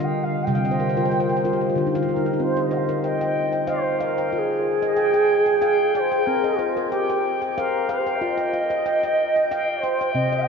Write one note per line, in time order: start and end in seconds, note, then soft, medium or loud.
0.00 0.34 D3 medium
0.00 0.16 D#5 medium
0.00 0.33 F5 medium
0.04 0.25 G5 medium
0.23 0.45 F5 medium
0.44 1.75 G5 medium
0.44 0.63 G5 medium
0.48 1.48 C3 medium
0.48 0.80 G3 medium
0.55 0.71 F5 medium
0.65 0.79 D#5 medium
0.71 0.87 C5 medium
0.80 0.96 A#4 medium
0.89 1.04 C5 medium
0.97 1.29 F4 medium
0.97 1.10 A#4 medium
1.05 1.19 C5 medium
1.12 1.28 A#4 medium
1.20 1.36 C5 medium
1.29 1.43 A#4 medium
1.37 1.52 C5 medium
1.45 1.60 F4 medium
1.45 1.61 A#4 medium
1.53 1.68 G4 medium
1.61 1.76 F4 medium
1.70 1.84 G4 medium
1.75 2.26 D3 medium
1.75 1.93 F4 medium
1.87 2.01 D#4 medium
1.95 2.08 F4 medium
1.95 2.27 F5 medium
2.03 2.17 G4 medium
2.09 2.25 F4 medium
2.09 2.43 A#4 medium
2.16 2.32 D#4 medium
2.26 2.40 F4 medium
2.33 2.48 D#4 medium
2.39 2.73 C4 medium
2.39 2.74 C5 medium
2.57 3.05 D#5 medium
2.71 3.22 C5 medium
2.71 2.78 G5 medium
2.77 2.96 F5 medium
2.89 3.22 A#4 medium
2.96 3.07 F5 medium
3.04 3.71 D#5 medium
3.04 3.20 G5 medium
3.21 3.51 G5 medium
3.52 4.01 G5 medium
3.67 4.18 C5 medium
3.67 4.02 C5 medium
3.67 3.99 F5 medium
4.00 4.33 A#4 medium
4.00 4.34 F5 medium
4.18 4.51 G5 medium
4.33 4.66 F4 medium
4.33 4.39 A#4 medium
4.38 5.94 G#4 medium
4.82 5.15 D#5 medium
4.97 5.13 G5 medium
5.14 5.45 G5 medium
5.46 5.60 G5 medium
5.62 6.12 F5 medium
5.62 5.94 G5 medium
5.94 6.00 D5 medium
5.94 6.11 G5 medium
5.99 6.27 C5 medium
6.12 6.44 G5 medium
6.26 6.60 C4 medium
6.26 6.59 A#4 medium
6.44 6.92 D#5 medium
6.58 6.92 F4 medium
6.58 7.09 C5 medium
6.77 7.09 A#4 medium
6.91 7.29 G4 medium
6.91 7.08 G5 medium
7.10 7.41 G5 medium
7.42 7.89 G5 soft
7.56 7.91 A#4 medium
7.56 8.07 C5 medium
7.56 7.88 F5 medium
7.89 8.17 C5 medium
7.89 8.21 F5 medium
8.07 8.36 G5 medium
8.16 8.23 F5 medium
8.21 8.54 F4 medium
8.21 9.83 D#5 loud
8.38 8.85 G5 medium
8.53 9.03 F5 medium
8.70 9.03 D#5 medium
8.86 9.02 G5 medium
9.03 9.35 G5 medium
9.36 9.50 G5 soft
9.51 10.00 F5 medium
9.51 9.82 G5 medium
9.82 10.13 C5 medium
9.82 10.00 G5 medium
10.01 10.32 G5 medium
10.11 10.48 C3 medium
10.11 10.47 C4 medium
10.11 10.46 D#5 medium
10.11 10.16 F5 medium
10.32 10.48 D#5 medium
10.44 10.48 G5 medium